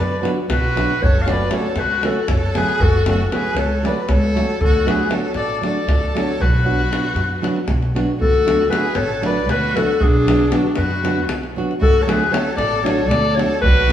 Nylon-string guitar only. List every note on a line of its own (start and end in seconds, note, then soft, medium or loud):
0.21 0.38 F#3 medium
0.21 0.38 B3 soft
0.21 0.39 D4 medium
0.21 0.39 F#4 medium
0.75 0.91 F#3 medium
0.75 0.91 B3 soft
0.75 0.92 D4 soft
0.75 0.92 F#4 soft
1.26 1.42 F#3 medium
1.26 1.42 A3 soft
1.26 1.42 C#4 medium
1.26 1.42 F#4 medium
1.51 1.66 F#3 soft
1.51 1.66 A3 medium
1.51 1.67 C#4 soft
1.51 1.67 F#4 medium
2.03 2.18 F#3 soft
2.03 2.19 A3 soft
2.03 2.19 C#4 medium
2.03 2.19 F#4 medium
2.57 2.71 F#3 soft
2.57 2.72 A3 soft
2.57 2.72 C#4 soft
2.57 2.72 F#4 medium
3.07 3.22 F#3 medium
3.07 3.22 A3 medium
3.07 3.22 C#4 medium
3.07 3.23 F#4 medium
3.32 3.46 F#3 soft
3.32 3.46 A3 medium
3.32 3.46 C#4 soft
3.32 3.47 F#4 medium
3.83 3.98 F#3 medium
3.83 3.98 A3 soft
3.83 3.99 C#4 medium
3.83 3.99 F#4 medium
4.34 4.50 F#3 medium
4.34 4.50 A3 medium
4.34 4.51 C#4 medium
4.34 4.51 F#4 medium
4.86 5.01 F#3 medium
4.86 5.01 A3 medium
4.86 5.02 D4 medium
4.86 5.02 F#4 medium
5.09 5.25 F#3 medium
5.09 5.25 A3 soft
5.09 5.25 D4 soft
5.09 5.26 F#4 medium
5.61 5.77 F#3 medium
5.61 5.78 A3 medium
5.61 5.78 D4 medium
5.61 5.78 F#4 medium
6.14 6.30 F#3 soft
6.14 6.30 A3 medium
6.14 6.30 D4 soft
6.14 6.31 F#4 medium
6.64 6.80 F#3 medium
6.64 6.80 B3 medium
6.64 6.81 D4 medium
6.64 6.81 F#4 medium
6.90 7.05 F#3 medium
6.90 7.06 B3 soft
6.90 7.06 D4 soft
6.90 7.06 F#4 medium
7.42 7.58 F#3 medium
7.42 7.58 B3 medium
7.42 7.58 D4 soft
7.42 7.58 F#4 medium
7.95 8.10 F#3 medium
7.95 8.11 B3 soft
7.95 8.11 D4 medium
7.95 8.11 F#4 medium
8.45 8.61 F#3 medium
8.45 8.61 A3 medium
8.45 8.62 D4 medium
8.45 8.62 F#4 medium
8.69 8.85 F#3 medium
8.69 8.85 A3 medium
8.69 8.86 D4 soft
8.69 8.86 F#4 medium
9.22 9.38 F#3 medium
9.22 9.38 A3 soft
9.22 9.38 D4 medium
9.22 9.39 F#4 medium
9.74 9.90 F#3 soft
9.74 9.91 A3 soft
9.74 9.91 D4 soft
9.74 9.91 F#4 medium
10.27 10.42 F#3 medium
10.27 10.42 B3 medium
10.27 10.42 D4 medium
10.27 10.43 F#4 medium
10.50 10.65 F#3 medium
10.50 10.66 B3 medium
10.50 10.66 D4 medium
10.50 10.66 F#4 medium
11.03 11.19 F#3 medium
11.03 11.19 B3 medium
11.03 11.19 D4 medium
11.03 11.20 F#4 medium
11.56 11.71 F#3 medium
11.56 11.72 B3 medium
11.56 11.72 D4 medium
11.56 11.73 F#4 medium
12.07 12.22 F#3 medium
12.07 12.22 A3 medium
12.07 12.23 D4 medium
12.07 12.23 F#4 medium
12.31 12.46 F#3 medium
12.31 12.47 A3 medium
12.31 12.47 D4 medium
12.31 12.48 F#4 medium
12.83 12.99 F#3 medium
12.83 12.99 A3 soft
12.83 13.00 D4 medium
12.83 13.00 F#4 medium
13.35 13.51 F#3 soft
13.35 13.51 A3 medium
13.35 13.52 D4 medium
13.35 13.52 F#4 medium
13.87 13.93 F#3 medium
13.87 13.93 B3 medium
13.87 13.93 D4 medium
13.87 13.93 F#4 medium